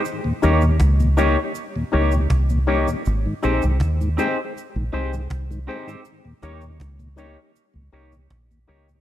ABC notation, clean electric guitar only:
X:1
M:4/4
L:1/16
Q:1/4=80
K:Ebmix
V:1 name="Clean electric guitar"
z2 [B,EGd] z3 [B,EGd] z3 [B,EGd] z3 [B,EGd] z | z2 [CEGc] z3 [CEGc] z3 [CEGc] z3 [CEGc] [CEGc] | z2 [B,EGd] z3 [B,EGd] z3 [B,EGd] z3 [B,EGd] z |]